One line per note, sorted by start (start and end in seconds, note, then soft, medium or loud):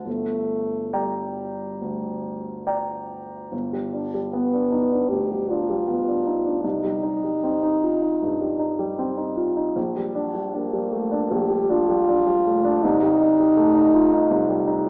0.05 0.90 G1 soft
0.05 0.96 A3 medium
0.93 2.67 G3 soft
0.93 1.77 D5 soft
0.93 1.77 G5 soft
0.93 1.78 A#5 soft
1.81 3.18 D2 soft
2.67 3.48 D5 soft
2.67 3.48 G5 soft
2.67 3.49 A#5 soft
3.52 5.06 G1 soft
3.73 4.05 G3 soft
3.93 4.25 D4 soft
4.14 4.45 G3 soft
4.33 4.64 B3 soft
4.33 5.10 B3 medium
4.54 4.84 D4 soft
4.72 4.91 D#4 soft
4.92 5.23 D4 soft
5.09 5.42 D2 soft
5.09 5.50 G4 medium
5.31 5.62 G3 soft
5.49 5.81 D4 soft
5.49 6.63 F4 medium
5.69 6.00 G3 soft
5.88 6.18 B3 soft
6.08 6.38 D4 soft
6.26 6.45 D#4 soft
6.46 6.65 D4 soft
6.63 8.19 C2 soft
6.63 9.33 D#4 medium
6.84 7.15 G3 soft
7.03 7.35 D#4 soft
7.24 7.55 G3 soft
7.43 7.75 C4 soft
7.63 7.95 D#4 soft
7.83 8.03 F4 soft
8.02 8.34 D#4 soft
8.22 8.53 G2 soft
8.41 8.72 G3 soft
8.59 8.90 D#4 soft
8.79 9.10 G3 soft
8.98 9.29 C4 soft
9.17 9.49 D#4 soft
9.36 9.56 F4 soft
9.57 9.76 D#4 soft
9.76 11.26 A#1 soft
9.96 10.27 G3 soft
10.15 10.46 D4 soft
10.35 10.65 G3 soft
10.54 11.34 A#3 medium
10.54 10.85 D4 soft
10.73 11.04 G3 soft
10.91 11.11 A3 soft
11.11 11.42 D4 soft
11.31 12.78 A#1 soft
11.31 11.72 G4 medium
11.51 11.81 G3 soft
11.70 12.00 D4 soft
11.70 12.85 F4 medium
11.88 12.18 G3 soft
12.09 12.38 D4 soft
12.26 12.56 G3 soft
12.47 12.64 A3 soft
12.64 12.83 D4 soft
12.83 14.28 C2 medium
12.83 14.89 D#4 medium
13.02 13.31 G3 soft
13.22 13.50 D#4 soft
13.39 13.68 G3 soft
13.56 13.86 A3 soft
13.75 14.04 D#4 soft
13.94 14.12 F4 soft
14.12 14.42 D#4 soft
14.31 14.89 C2 medium
14.49 14.80 G3 soft
14.67 14.89 D#4 soft